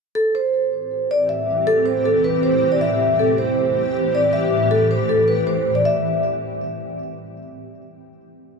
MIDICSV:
0, 0, Header, 1, 3, 480
1, 0, Start_track
1, 0, Key_signature, 0, "minor"
1, 0, Tempo, 379747
1, 195, Time_signature, 4, 2, 24, 8
1, 10864, End_track
2, 0, Start_track
2, 0, Title_t, "Vibraphone"
2, 0, Program_c, 0, 11
2, 192, Note_on_c, 0, 69, 82
2, 405, Note_off_c, 0, 69, 0
2, 441, Note_on_c, 0, 72, 70
2, 1348, Note_off_c, 0, 72, 0
2, 1403, Note_on_c, 0, 74, 80
2, 1611, Note_off_c, 0, 74, 0
2, 1631, Note_on_c, 0, 76, 66
2, 2084, Note_off_c, 0, 76, 0
2, 2111, Note_on_c, 0, 69, 103
2, 2325, Note_off_c, 0, 69, 0
2, 2346, Note_on_c, 0, 72, 77
2, 2562, Note_off_c, 0, 72, 0
2, 2597, Note_on_c, 0, 69, 81
2, 2808, Note_off_c, 0, 69, 0
2, 2835, Note_on_c, 0, 71, 81
2, 3047, Note_off_c, 0, 71, 0
2, 3073, Note_on_c, 0, 72, 75
2, 3413, Note_off_c, 0, 72, 0
2, 3437, Note_on_c, 0, 74, 75
2, 3542, Note_off_c, 0, 74, 0
2, 3554, Note_on_c, 0, 76, 87
2, 4006, Note_off_c, 0, 76, 0
2, 4036, Note_on_c, 0, 69, 74
2, 4248, Note_off_c, 0, 69, 0
2, 4276, Note_on_c, 0, 72, 71
2, 5185, Note_off_c, 0, 72, 0
2, 5241, Note_on_c, 0, 74, 79
2, 5450, Note_off_c, 0, 74, 0
2, 5472, Note_on_c, 0, 76, 80
2, 5924, Note_off_c, 0, 76, 0
2, 5954, Note_on_c, 0, 69, 103
2, 6166, Note_off_c, 0, 69, 0
2, 6204, Note_on_c, 0, 72, 81
2, 6412, Note_off_c, 0, 72, 0
2, 6436, Note_on_c, 0, 69, 85
2, 6648, Note_off_c, 0, 69, 0
2, 6671, Note_on_c, 0, 71, 78
2, 6885, Note_off_c, 0, 71, 0
2, 6914, Note_on_c, 0, 72, 82
2, 7253, Note_off_c, 0, 72, 0
2, 7271, Note_on_c, 0, 74, 74
2, 7379, Note_off_c, 0, 74, 0
2, 7399, Note_on_c, 0, 76, 89
2, 7848, Note_off_c, 0, 76, 0
2, 10864, End_track
3, 0, Start_track
3, 0, Title_t, "Ambient pad"
3, 0, Program_c, 1, 92
3, 195, Note_on_c, 1, 45, 80
3, 195, Note_on_c, 1, 52, 77
3, 195, Note_on_c, 1, 60, 74
3, 195, Note_on_c, 1, 67, 90
3, 3997, Note_off_c, 1, 45, 0
3, 3997, Note_off_c, 1, 52, 0
3, 3997, Note_off_c, 1, 67, 0
3, 4034, Note_on_c, 1, 52, 77
3, 4035, Note_on_c, 1, 45, 81
3, 4035, Note_on_c, 1, 67, 95
3, 7825, Note_off_c, 1, 60, 0
3, 7836, Note_off_c, 1, 52, 0
3, 7837, Note_off_c, 1, 45, 0
3, 7837, Note_off_c, 1, 67, 0
3, 10864, End_track
0, 0, End_of_file